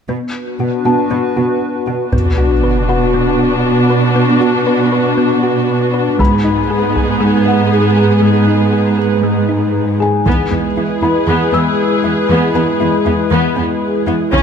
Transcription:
0.09 B2 B3 D4 F#4 B4
0.60 B2 F#4
0.85 B2 F#4 A5
1.11 B2 B3
1.36 B2 F#4
1.87 B2 F#4
2.12 B2 B3 D4 F#4 B4, taiko, sub drop
2.38 F#4
2.64 B4
2.88 F#4 B4 F#5
3.14 B3
3.39 F#4
3.90 B4
4.16 B3
4.41 F#4
4.67 B4
4.92 B4
5.18 B3
5.43 F#4
5.94 B4
6.19 G#2 G#3 B3 D#4 G#4 B4 B5, taiko
6.44 D#4
6.70 G#4
6.96 G#4, taiko
7.21 G#3
7.45 D#4 F#5
7.97 G#4
8.22 G#3
8.48 D#4
8.73 G#4
8.98 G#4
9.23 G#3
9.49 D#4
10.00 G#4 G#5
10.26 E2 E3 G#3 B3 E4 G#4 B4, taiko
10.51 E2 B3
10.76 E2 B3 E4
11.02 E2 B3 E4 B4 B5
11.27 E2 E3 B3
11.52 E2 B3 E6
12.04 E2 B3 E4
12.29 E2 E3 B3
12.55 E2 B3 B4 B5
12.80 E2 B3 E4
13.06 E2 B3 E4
13.31 E2 E3 B3
13.57 E2 B3
14.07 E2 B3 E4
14.32 C#3 C#4 F4 C#5, taiko

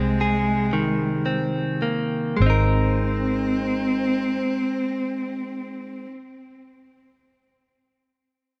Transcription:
Already playing: C2 C3 G#3 C4 G#4
0.21 G#4
0.73 D#3
1.26 C4
1.82 A#3
2.37 G#1 G#3
2.42 C4
2.46 D#4 A#4

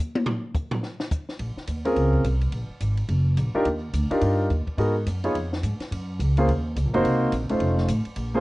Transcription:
0.15 high tom
0.26 floor tom
0.54 kick, hi-hat pedal
0.71 floor tom
0.83 snare
1.00 snare
1.11 kick, hi-hat pedal
1.29 snare
1.39 A#1, kick, ride
1.56 muted upright bass stroke, snare
1.67 D#2, kick, hi-hat pedal, ride
1.85 C4 C#4 F4 G#4 A#4, ride
1.96 C#2, kick, ride
2.13 kick
2.24 C2, kick, hi-hat pedal, ride
2.41 ride
2.52 A#1, kick, ride
2.69 muted upright bass stroke
2.80 G#1, kick, hi-hat pedal, ride
2.97 ride
3.08 F#1, kick, ride
3.37 A#1, kick, hi-hat pedal, ride
3.54 D4 D#4 F4 G4 A#4, muted upright bass stroke
3.65 D#2, kick, ride
3.93 D2, kick, hi-hat pedal, ride
4.10 D4 D#4 F4 G4 A#4, muted upright bass stroke, ride
4.21 G2, kick, ride
4.50 D#2, kick, hi-hat pedal, ride
4.67 muted upright bass stroke, kick, ride
4.78 G#2 B3 D#4 F#4 G#4 A#4, kick, ride
5.06 F#2, kick, hi-hat pedal, ride
5.24 B3 D#4 F4 G#4 C#5, ride
5.35 F2, kick, ride
5.53 snare
5.63 G#2, kick, hi-hat pedal, ride
5.80 muted upright bass stroke, snare, ride
5.91 F#2, kick, ride
6.20 C#2, kick, hi-hat pedal, ride
6.37 A#3 C#4 F4 G#4 C5, ride
6.48 D#2, kick, ride
6.76 C#2, kick, hi-hat pedal, ride
6.85 A#1
6.94 F#1 A#3 C4 D#4 F#4 C5, ride
7.04 C2, kick, ride
7.32 A#1, kick, hi-hat pedal, ride
7.42 F#1
7.49 D#1 A3 C#4 D#4 F4 C5, ride
7.60 F1, kick, ride
7.78 snare
7.88 A1, kick, hi-hat pedal, ride
8.05 muted upright bass stroke, ride
8.16 A#1, kick, ride
8.34 A#3 C#4 F4 G#4 C5

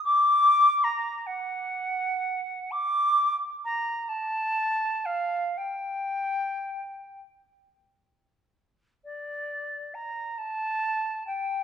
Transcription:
0.05 D6
0.84 A#5
1.26 F#5
2.71 D6
3.65 A#5
4.09 A5
5.06 F5
5.57 G5
9.05 D5
9.94 A#5
10.38 A5
11.27 G5

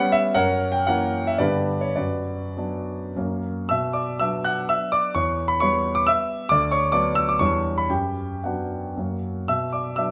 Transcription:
Already playing: G3 B3 C#4 F#5
0.12 E5
0.34 F#2 A#4 C#5 F#5
0.72 G5
0.87 E3 A#3 C#4 A#4 C#5 F#5
1.27 E5
1.38 G2 D3 B3 G4 B4 D5
1.81 C#5
1.96 F#2 F#4 B4 D5
2.57 F#3 B3 D4
3.16 F#2 F#3 A#3 C#4
3.69 B2 E5 E6
3.93 D5 D6
4.20 F#3 B3 D4 E5 E6
4.44 F#5 F#6
4.69 E5 E6
4.92 D5 D6
5.15 E2 C#5 C#6
5.48 B5
5.60 G3 B3 C#5 C#6
5.95 D6
6.07 E5 E6
6.49 D2 D5 D6
6.71 C#5 C#6
6.92 F#3 B3 D4 D5 D6
7.15 E6
7.29 D6
7.39 E2 G3 B3 D4 C#5 C#6
7.78 B5
7.89 F#2 G4 G5
8.44 F#3 B3 D4 F#4 F#5
8.97 F#2 F#3 A#3 C#4
9.48 B2 E5 E6
9.73 D5 D6
9.96 F#3 B3 D4 E5 E6

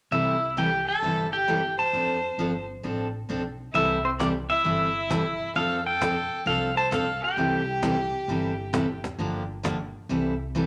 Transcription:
0.11 C2 C3 E3 G3 C4 E4 A4 E5
0.57 C3 E3 G3 C4 E4 G4 A4 G5
0.86 A4 A5
1.02 G1 C3 E3 G3 C4 E4 A4
1.32 G4 G5
1.48 C3 E3 G3 C4 E4 A4
1.77 C5 A5
1.93 F2 F3 C4 D4 A4
2.38 G1 F3 C4 D4 A4
2.83 A1 F3 C4 D4 A4
3.29 B1 F3 C4 D4 A4
3.73 C2 C3 E3 G3 C4 E4 A4 E5
4.04 C4 C5
4.19 C3 E3 G3 C4 E4 G4 A4 D5, cajon slap
4.50 E4 E5
4.64 G1 C3 E3 G3 C4 E4 A4
5.10 C3 E3 G3 C4 E4 A4, cajon slap
5.55 F2 F3 C4 D4 A4 F5
5.85 A4 G5
6.01 F3 C4 D4 A4, cajon slap
6.46 C2 F3 C4 D4 A4 F5
6.76 C5 A5
6.91 F3 C4 D4 A4 F5, cajon slap
7.23 G4 G5
7.37 C2 C3 E3 G3 C4 E4 A4
7.82 C3 E3 G3 C4 E4 A4, cajon slap
8.28 G1 C3 E3 G3 C4 E4 A4
8.73 C3 E3 G3 C4 E4 A4, cajon slap
9.04 cajon slap
9.18 G1 D3 F3 A#3 D4 G4
9.63 D3 F3 A#3 D4 G4, cajon slap
10.09 C2 C3 E3 G3 C4 E4 A4
10.55 C3 E3 G3 C4 E4 A4

